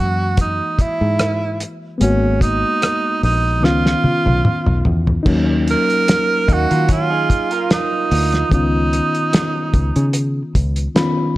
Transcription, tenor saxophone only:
0, 0, Header, 1, 2, 480
1, 0, Start_track
1, 0, Tempo, 814111
1, 1182, Time_signature, 4, 2, 24, 8
1, 6706, End_track
2, 0, Start_track
2, 0, Title_t, "Tenor saxophone"
2, 0, Program_c, 0, 66
2, 0, Note_on_c, 0, 66, 101
2, 235, Note_off_c, 0, 66, 0
2, 244, Note_on_c, 0, 63, 87
2, 479, Note_on_c, 0, 64, 82
2, 488, Note_off_c, 0, 63, 0
2, 950, Note_off_c, 0, 64, 0
2, 1189, Note_on_c, 0, 61, 72
2, 1408, Note_off_c, 0, 61, 0
2, 1428, Note_on_c, 0, 63, 92
2, 1881, Note_off_c, 0, 63, 0
2, 1909, Note_on_c, 0, 63, 90
2, 2145, Note_on_c, 0, 65, 87
2, 2154, Note_off_c, 0, 63, 0
2, 2863, Note_off_c, 0, 65, 0
2, 3364, Note_on_c, 0, 70, 110
2, 3849, Note_on_c, 0, 66, 96
2, 3858, Note_off_c, 0, 70, 0
2, 4075, Note_off_c, 0, 66, 0
2, 4080, Note_on_c, 0, 65, 89
2, 4527, Note_off_c, 0, 65, 0
2, 4555, Note_on_c, 0, 63, 80
2, 5004, Note_off_c, 0, 63, 0
2, 5033, Note_on_c, 0, 63, 90
2, 5964, Note_off_c, 0, 63, 0
2, 6706, End_track
0, 0, End_of_file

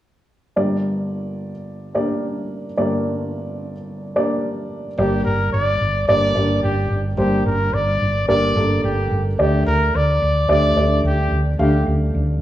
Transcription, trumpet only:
0, 0, Header, 1, 2, 480
1, 0, Start_track
1, 0, Key_signature, -2, "minor"
1, 0, Tempo, 550964
1, 497, Time_signature, 4, 2, 24, 8
1, 10819, End_track
2, 0, Start_track
2, 0, Title_t, "Trumpet"
2, 0, Program_c, 0, 56
2, 4345, Note_on_c, 0, 67, 75
2, 4566, Note_off_c, 0, 67, 0
2, 4572, Note_on_c, 0, 70, 81
2, 4799, Note_off_c, 0, 70, 0
2, 4816, Note_on_c, 0, 74, 87
2, 5264, Note_off_c, 0, 74, 0
2, 5298, Note_on_c, 0, 74, 96
2, 5746, Note_off_c, 0, 74, 0
2, 5773, Note_on_c, 0, 67, 73
2, 6111, Note_off_c, 0, 67, 0
2, 6259, Note_on_c, 0, 67, 67
2, 6483, Note_off_c, 0, 67, 0
2, 6504, Note_on_c, 0, 70, 75
2, 6741, Note_on_c, 0, 74, 86
2, 6754, Note_off_c, 0, 70, 0
2, 7215, Note_off_c, 0, 74, 0
2, 7220, Note_on_c, 0, 74, 98
2, 7667, Note_off_c, 0, 74, 0
2, 7707, Note_on_c, 0, 67, 73
2, 8039, Note_off_c, 0, 67, 0
2, 8186, Note_on_c, 0, 67, 72
2, 8407, Note_off_c, 0, 67, 0
2, 8421, Note_on_c, 0, 70, 78
2, 8676, Note_on_c, 0, 74, 86
2, 8689, Note_off_c, 0, 70, 0
2, 9149, Note_off_c, 0, 74, 0
2, 9156, Note_on_c, 0, 74, 91
2, 9595, Note_off_c, 0, 74, 0
2, 9642, Note_on_c, 0, 67, 74
2, 9967, Note_off_c, 0, 67, 0
2, 10119, Note_on_c, 0, 67, 57
2, 10334, Note_off_c, 0, 67, 0
2, 10819, End_track
0, 0, End_of_file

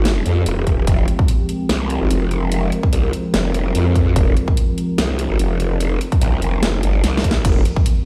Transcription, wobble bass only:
0, 0, Header, 1, 2, 480
1, 0, Start_track
1, 0, Key_signature, -4, "minor"
1, 0, Tempo, 410959
1, 1020, Time_signature, 4, 2, 24, 8
1, 9405, End_track
2, 0, Start_track
2, 0, Title_t, "Wobble bass"
2, 0, Program_c, 0, 39
2, 0, Note_on_c, 0, 32, 99
2, 282, Note_off_c, 0, 32, 0
2, 301, Note_on_c, 0, 41, 99
2, 523, Note_off_c, 0, 41, 0
2, 540, Note_on_c, 0, 27, 96
2, 1002, Note_off_c, 0, 27, 0
2, 1020, Note_on_c, 0, 29, 99
2, 1242, Note_off_c, 0, 29, 0
2, 1979, Note_on_c, 0, 36, 94
2, 2329, Note_off_c, 0, 36, 0
2, 2349, Note_on_c, 0, 32, 97
2, 2442, Note_off_c, 0, 32, 0
2, 2459, Note_on_c, 0, 29, 100
2, 3162, Note_off_c, 0, 29, 0
2, 3420, Note_on_c, 0, 36, 97
2, 3642, Note_off_c, 0, 36, 0
2, 3899, Note_on_c, 0, 29, 98
2, 4362, Note_off_c, 0, 29, 0
2, 4380, Note_on_c, 0, 41, 97
2, 4842, Note_off_c, 0, 41, 0
2, 4859, Note_on_c, 0, 29, 97
2, 5082, Note_off_c, 0, 29, 0
2, 5820, Note_on_c, 0, 36, 99
2, 6169, Note_off_c, 0, 36, 0
2, 6189, Note_on_c, 0, 32, 93
2, 6282, Note_off_c, 0, 32, 0
2, 6299, Note_on_c, 0, 29, 100
2, 7002, Note_off_c, 0, 29, 0
2, 7258, Note_on_c, 0, 36, 97
2, 7481, Note_off_c, 0, 36, 0
2, 7499, Note_on_c, 0, 29, 100
2, 7722, Note_off_c, 0, 29, 0
2, 7739, Note_on_c, 0, 29, 93
2, 7962, Note_off_c, 0, 29, 0
2, 7978, Note_on_c, 0, 31, 100
2, 8201, Note_off_c, 0, 31, 0
2, 8219, Note_on_c, 0, 36, 101
2, 8682, Note_off_c, 0, 36, 0
2, 8699, Note_on_c, 0, 29, 99
2, 8922, Note_off_c, 0, 29, 0
2, 9405, End_track
0, 0, End_of_file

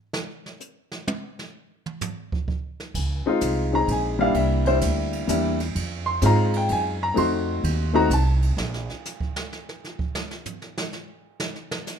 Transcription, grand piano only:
0, 0, Header, 1, 2, 480
1, 0, Start_track
1, 0, Tempo, 469484
1, 134, Time_signature, 3, 2, 24, 8
1, 12261, End_track
2, 0, Start_track
2, 0, Title_t, "Grand piano"
2, 0, Program_c, 0, 0
2, 3333, Note_on_c, 0, 56, 74
2, 3333, Note_on_c, 0, 60, 70
2, 3342, Note_on_c, 0, 63, 72
2, 3355, Note_on_c, 0, 65, 90
2, 3777, Note_off_c, 0, 56, 0
2, 3777, Note_off_c, 0, 60, 0
2, 3782, Note_off_c, 0, 63, 0
2, 3788, Note_off_c, 0, 65, 0
2, 3802, Note_on_c, 0, 56, 58
2, 3814, Note_on_c, 0, 60, 56
2, 3816, Note_on_c, 0, 63, 53
2, 3825, Note_on_c, 0, 68, 67
2, 3834, Note_on_c, 0, 82, 97
2, 3974, Note_off_c, 0, 82, 0
2, 4002, Note_on_c, 0, 80, 80
2, 4252, Note_off_c, 0, 56, 0
2, 4258, Note_off_c, 0, 60, 0
2, 4259, Note_off_c, 0, 63, 0
2, 4263, Note_off_c, 0, 68, 0
2, 4281, Note_on_c, 0, 55, 87
2, 4286, Note_on_c, 0, 58, 65
2, 4296, Note_off_c, 0, 80, 0
2, 4297, Note_on_c, 0, 62, 70
2, 4301, Note_on_c, 0, 77, 101
2, 4303, Note_on_c, 0, 64, 85
2, 4447, Note_off_c, 0, 77, 0
2, 4456, Note_on_c, 0, 76, 74
2, 4740, Note_off_c, 0, 55, 0
2, 4742, Note_off_c, 0, 58, 0
2, 4756, Note_off_c, 0, 62, 0
2, 4756, Note_on_c, 0, 55, 68
2, 4757, Note_on_c, 0, 58, 56
2, 4759, Note_off_c, 0, 64, 0
2, 4762, Note_off_c, 0, 76, 0
2, 4771, Note_on_c, 0, 62, 66
2, 4774, Note_on_c, 0, 64, 77
2, 4775, Note_on_c, 0, 72, 91
2, 4867, Note_off_c, 0, 72, 0
2, 5368, Note_off_c, 0, 55, 0
2, 5368, Note_off_c, 0, 58, 0
2, 5375, Note_off_c, 0, 62, 0
2, 5377, Note_off_c, 0, 64, 0
2, 5392, Note_on_c, 0, 55, 71
2, 5397, Note_on_c, 0, 58, 62
2, 5409, Note_on_c, 0, 62, 64
2, 5417, Note_on_c, 0, 64, 80
2, 5688, Note_off_c, 0, 55, 0
2, 5690, Note_off_c, 0, 58, 0
2, 5696, Note_off_c, 0, 62, 0
2, 5700, Note_off_c, 0, 64, 0
2, 6196, Note_on_c, 0, 84, 105
2, 6355, Note_off_c, 0, 84, 0
2, 6358, Note_on_c, 0, 56, 77
2, 6364, Note_on_c, 0, 60, 70
2, 6368, Note_on_c, 0, 63, 65
2, 6380, Note_on_c, 0, 65, 85
2, 6399, Note_on_c, 0, 82, 94
2, 6695, Note_off_c, 0, 82, 0
2, 6715, Note_on_c, 0, 79, 101
2, 6855, Note_off_c, 0, 79, 0
2, 6869, Note_on_c, 0, 80, 90
2, 7100, Note_off_c, 0, 56, 0
2, 7102, Note_off_c, 0, 60, 0
2, 7105, Note_off_c, 0, 63, 0
2, 7110, Note_off_c, 0, 65, 0
2, 7170, Note_off_c, 0, 80, 0
2, 7187, Note_on_c, 0, 82, 101
2, 7302, Note_on_c, 0, 57, 69
2, 7315, Note_on_c, 0, 60, 60
2, 7317, Note_on_c, 0, 63, 56
2, 7328, Note_on_c, 0, 66, 74
2, 7332, Note_off_c, 0, 82, 0
2, 7341, Note_on_c, 0, 84, 102
2, 8052, Note_off_c, 0, 57, 0
2, 8059, Note_off_c, 0, 60, 0
2, 8060, Note_off_c, 0, 63, 0
2, 8065, Note_off_c, 0, 66, 0
2, 8095, Note_off_c, 0, 84, 0
2, 8112, Note_on_c, 0, 57, 82
2, 8122, Note_on_c, 0, 60, 73
2, 8124, Note_on_c, 0, 63, 76
2, 8128, Note_on_c, 0, 66, 89
2, 8133, Note_on_c, 0, 82, 106
2, 8264, Note_off_c, 0, 57, 0
2, 8268, Note_off_c, 0, 60, 0
2, 8269, Note_off_c, 0, 63, 0
2, 8272, Note_off_c, 0, 66, 0
2, 8285, Note_off_c, 0, 82, 0
2, 8315, Note_on_c, 0, 81, 90
2, 8500, Note_off_c, 0, 81, 0
2, 12261, End_track
0, 0, End_of_file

